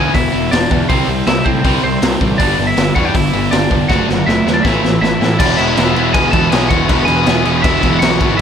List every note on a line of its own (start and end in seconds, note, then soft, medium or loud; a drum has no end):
0.00 0.13 E2 medium
0.00 0.13 B2 medium
0.00 0.12 E3 medium
0.00 0.14 E3 loud
0.00 0.13 B3 medium
0.00 0.13 E4 medium
0.00 0.13 G#4 medium
0.00 0.13 G#5 loud
0.14 0.28 E1 medium
0.14 0.32 E2 medium
0.14 0.32 B2 medium
0.14 0.31 E3 medium
0.14 0.51 E3 medium
0.14 0.31 B3 medium
0.14 0.50 E4 medium
0.14 0.53 E5 medium
0.14 kick loud
0.14 open hi-hat medium
0.32 0.46 E1 medium
0.32 0.50 E2 medium
0.32 0.50 B2 medium
0.32 0.49 E3 medium
0.32 0.50 B3 medium
0.51 0.65 E1 medium
0.51 0.69 E2 medium
0.51 0.69 B2 loud
0.51 0.69 E3 medium
0.51 0.70 E3 loud
0.51 0.69 B3 medium
0.51 0.87 D4 medium
0.51 0.86 D5 medium
0.51 snare loud
0.51 open hi-hat medium
0.70 0.87 E2 medium
0.70 0.84 E2 medium
0.70 0.88 B2 medium
0.70 0.88 E3 medium
0.70 0.89 E3 medium
0.70 0.88 B3 medium
0.70 kick medium
0.89 1.03 C2 loud
0.89 1.07 C3 medium
0.89 1.07 C3 loud
0.89 1.07 G3 medium
0.89 1.07 C4 medium
0.89 1.25 C4 medium
0.89 1.08 C4 loud
0.89 1.24 C5 medium
0.89 kick loud
0.89 open hi-hat medium
1.08 1.21 C2 medium
1.08 1.25 C3 medium
1.08 1.25 G3 medium
1.27 1.40 C2 medium
1.27 1.44 C3 medium
1.27 1.44 G3 medium
1.27 1.44 C4 loud
1.27 1.45 E4 medium
1.27 1.46 E5 medium
1.27 snare loud
1.27 open hi-hat medium
1.45 1.59 A2 medium
1.45 1.63 C3 medium
1.45 1.63 G3 medium
1.45 1.64 C4 loud
1.45 1.81 C4 medium
1.45 1.80 C5 medium
1.45 kick medium
1.64 1.78 C2 loud
1.64 1.82 C3 medium
1.64 1.83 C3 medium
1.64 1.82 G3 medium
1.64 1.83 G3 loud
1.64 1.83 C4 medium
1.64 1.83 C4 loud
1.64 kick loud
1.64 open hi-hat medium
1.83 1.97 C2 medium
1.83 2.00 C3 medium
1.83 2.01 C3 medium
1.83 2.00 G3 medium
1.83 2.01 G3 medium
1.83 2.19 C4 medium
1.83 2.18 C5 medium
2.02 2.15 C2 medium
2.02 2.19 C3 medium
2.02 2.19 G3 medium
2.02 2.20 C4 medium
2.02 snare loud
2.02 open hi-hat medium
2.21 2.34 A1 medium
2.21 2.38 C3 medium
2.21 2.38 G3 medium
2.21 2.39 C4 medium
2.21 kick medium
2.38 2.53 G1 loud
2.38 2.57 G2 medium
2.38 2.57 D3 loud
2.38 2.57 G3 medium
2.38 2.58 G3 medium
2.38 2.57 B3 loud
2.38 2.66 D4 medium
2.38 2.58 D4 loud
2.38 2.68 D5 medium
2.38 kick loud
2.38 open hi-hat medium
2.58 2.72 G1 loud
2.58 2.75 G2 medium
2.58 2.75 D3 medium
2.58 2.75 G3 medium
2.58 2.75 B3 medium
2.67 2.94 E4 medium
2.67 2.95 E5 medium
2.77 2.90 G1 loud
2.77 2.94 G2 medium
2.77 2.94 D3 medium
2.77 2.94 G3 medium
2.77 2.95 G3 loud
2.77 2.94 B3 medium
2.77 snare loud
2.77 open hi-hat medium
2.95 3.09 E2 loud
2.95 3.13 G2 medium
2.95 3.13 D3 loud
2.95 3.13 G3 medium
2.95 3.14 G3 loud
2.95 3.14 B3 medium
2.95 3.14 D4 medium
2.95 3.05 F#4 medium
2.95 3.05 F#5 medium
2.95 kick medium
3.05 3.15 G4 medium
3.05 3.14 G5 medium
3.14 3.28 G1 medium
3.14 3.32 G2 medium
3.14 3.32 D3 medium
3.14 3.31 G3 medium
3.14 3.51 G3 loud
3.14 3.32 B3 medium
3.14 3.50 E4 medium
3.14 3.53 E5 medium
3.14 kick loud
3.14 open hi-hat medium
3.33 3.46 G1 medium
3.33 3.50 G2 medium
3.33 3.50 D3 medium
3.33 3.50 G3 medium
3.33 3.50 B3 medium
3.51 3.65 G1 medium
3.51 3.69 G2 medium
3.51 3.70 D3 medium
3.51 3.69 G3 medium
3.51 3.70 G3 loud
3.51 3.69 B3 medium
3.51 3.87 D4 medium
3.51 3.90 D5 medium
3.51 snare loud
3.51 open hi-hat medium
3.71 3.84 F1 medium
3.71 3.88 G2 medium
3.71 3.87 D3 medium
3.71 3.88 G3 medium
3.71 3.89 G3 loud
3.71 3.88 B3 medium
3.71 kick medium
3.88 4.03 F#1 loud
3.88 4.07 D3 medium
3.88 4.07 F#3 medium
3.88 4.07 A3 medium
3.88 4.08 A3 loud
3.88 4.07 D4 medium
3.88 4.08 D4 loud
3.88 4.24 F#4 medium
3.88 4.26 F#5 medium
3.88 kick loud
3.88 snare medium
4.08 4.22 F#1 medium
4.08 4.25 D3 medium
4.08 4.26 F#3 medium
4.08 4.25 A3 medium
4.08 4.26 A3 medium
4.08 snare medium
4.26 4.40 F#1 loud
4.26 4.44 D3 medium
4.26 4.44 F#3 medium
4.26 4.44 A3 medium
4.26 4.46 D4 loud
4.26 4.53 E4 medium
4.26 4.56 E5 medium
4.26 snare medium
4.46 4.59 E2 medium
4.46 4.63 D3 medium
4.46 4.63 F#3 medium
4.46 4.63 A3 medium
4.46 4.64 A3 medium
4.46 4.64 D4 medium
4.46 snare medium
4.54 4.63 D4 medium
4.54 4.64 D5 medium
4.63 4.78 A1 loud
4.63 4.83 A2 medium
4.63 4.83 E3 medium
4.63 4.83 A3 medium
4.63 5.01 E4 medium
4.63 5.00 E5 medium
4.63 kick loud
4.63 snare loud
4.83 4.96 A1 medium
4.83 5.00 A2 medium
4.83 5.01 A2 medium
4.83 5.01 E3 medium
4.83 snare medium
5.01 5.15 A1 medium
5.01 5.19 A2 medium
5.01 5.19 E3 medium
5.01 5.21 A3 loud
5.01 5.37 E4 medium
5.01 5.40 E5 medium
5.01 snare loud
5.20 5.34 A2 medium
5.20 5.38 A2 medium
5.20 5.38 E3 medium
5.20 5.39 A3 medium
5.20 snare medium
5.39 5.57 E1 loud
5.39 5.57 E2 medium
5.39 5.57 B2 loud
5.39 5.58 E3 medium
5.39 5.58 E3 loud
5.39 5.58 G#3 loud
5.39 5.59 B3 loud
5.39 5.57 D4 medium
5.39 5.59 E4 loud
5.39 5.59 D5 medium
5.39 kick loud
5.39 crash loud
5.57 5.75 E1 medium
5.57 5.76 E2 medium
5.57 5.76 B2 loud
5.57 5.77 E3 loud
5.57 5.77 E3 medium
5.57 5.77 G#3 loud
5.57 5.78 B3 loud
5.57 6.11 E4 medium
5.57 5.78 E4 loud
5.57 6.16 E5 medium
5.57 crash medium
5.77 5.94 E1 loud
5.77 5.95 E2 medium
5.77 5.95 B2 loud
5.77 5.96 E3 medium
5.77 5.96 G#3 loud
5.77 5.96 B3 medium
5.77 5.97 E4 loud
5.77 snare loud
5.77 crash medium
5.96 6.13 E1 medium
5.96 6.14 E2 medium
5.96 6.14 B2 loud
5.96 6.14 E3 medium
5.96 6.15 E3 loud
5.96 6.14 G#3 medium
5.96 6.14 B3 medium
5.96 6.15 E4 medium
5.96 crash medium
6.14 6.32 E1 medium
6.14 6.32 E2 medium
6.14 6.32 B2 medium
6.14 6.33 E3 medium
6.14 6.34 E3 medium
6.14 6.32 G#3 medium
6.14 6.33 B3 loud
6.14 6.34 E4 medium
6.14 6.32 G#4 medium
6.14 6.31 G#5 medium
6.14 kick loud
6.14 crash medium
6.31 6.50 E1 loud
6.31 6.52 E2 loud
6.31 6.52 B2 loud
6.31 6.51 E3 medium
6.31 6.53 E3 loud
6.31 6.51 G#3 loud
6.31 6.51 B3 loud
6.31 6.52 E4 loud
6.31 6.51 A4 medium
6.31 6.50 A5 loud
6.31 kick loud
6.31 crash medium
6.50 6.69 B1 medium
6.50 6.70 E2 loud
6.50 6.70 B2 loud
6.50 6.70 E3 medium
6.50 6.71 E3 loud
6.50 6.69 G#3 medium
6.50 6.70 B3 medium
6.50 6.71 E4 loud
6.50 6.69 G#4 medium
6.50 6.70 G#5 loud
6.50 snare loud
6.50 crash medium
6.69 6.87 E1 medium
6.69 6.88 E2 medium
6.69 6.89 B2 medium
6.69 6.88 E3 medium
6.69 6.89 E3 loud
6.69 6.88 G#3 medium
6.69 6.89 B3 medium
6.69 6.90 E4 medium
6.69 7.05 F#4 medium
6.69 7.08 F#5 loud
6.69 kick medium
6.69 crash medium
6.89 7.06 E1 loud
6.89 7.07 E2 medium
6.89 7.08 B2 medium
6.89 7.08 E3 loud
6.89 7.09 E3 loud
6.89 7.08 G#3 loud
6.89 7.08 B3 loud
6.89 7.09 E4 loud
6.89 kick loud
6.89 crash medium
7.05 7.25 E1 medium
7.05 7.26 E2 loud
7.05 7.26 B2 medium
7.05 7.26 E3 medium
7.05 7.26 G#3 medium
7.05 7.60 G#4 medium
7.05 7.64 G#5 loud
7.05 crash medium
7.09 7.27 E3 loud
7.09 7.26 B3 loud
7.09 7.28 E4 loud
7.26 7.43 E1 loud
7.26 7.44 E2 medium
7.26 7.44 B2 medium
7.26 7.44 E3 medium
7.26 7.46 E3 loud
7.26 7.44 G#3 medium
7.26 7.45 B3 medium
7.26 7.46 E4 medium
7.26 snare loud
7.26 crash medium
7.45 7.62 E1 medium
7.45 7.62 E2 loud
7.45 7.63 B2 loud
7.45 7.63 E3 medium
7.45 7.64 E3 loud
7.45 7.63 G#3 loud
7.45 7.64 B3 medium
7.45 7.65 E4 medium
7.45 crash medium
7.62 7.81 E1 loud
7.62 7.82 E2 medium
7.62 7.82 B2 medium
7.62 7.82 E3 medium
7.62 7.84 E3 loud
7.62 7.81 G#3 medium
7.62 7.82 B3 medium
7.62 7.99 E4 medium
7.62 7.84 E4 medium
7.62 7.99 E5 medium
7.62 kick loud
7.62 crash medium
7.82 8.00 E1 medium
7.82 8.01 E2 loud
7.82 8.01 B2 loud
7.82 8.00 E3 medium
7.82 8.02 E3 loud
7.82 8.00 G#3 loud
7.82 8.01 B3 medium
7.82 8.02 E4 loud
7.82 kick medium
7.82 crash medium
7.99 8.19 B1 medium
7.99 8.20 E2 medium
7.99 8.20 B2 medium
7.99 8.20 E3 medium
7.99 8.21 E3 loud
7.99 8.20 G#3 loud
7.99 8.21 B3 medium
7.99 8.22 E4 medium
7.99 8.37 F#4 medium
7.99 8.37 F#5 medium
7.99 snare loud
7.99 crash medium
8.21 8.38 G#1 medium
8.21 8.38 E2 medium
8.21 8.38 B2 loud
8.21 8.39 E3 medium
8.21 8.40 E3 medium
8.21 8.39 G#3 medium
8.21 8.39 B3 loud
8.21 8.40 E4 loud
8.21 kick loud
8.21 crash medium
8.37 8.41 A2 loud
8.37 8.41 E5 loud